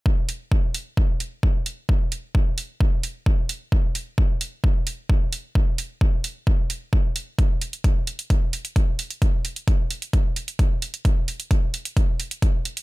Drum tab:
HH |--o---o---o---o-|--o---o---o---o-|--o---o---o---o-|--o---o---o---o-|
BD |o---o---o---o---|o---o---o---o---|o---o---o---o---|o---o---o---o---|

HH |x-oxx-oxx-oxx-ox|x-oxx-oxx-oxx-ox|x-oxx-oxx-oxx-ox|
BD |o---o---o---o---|o---o---o---o---|o---o---o---o---|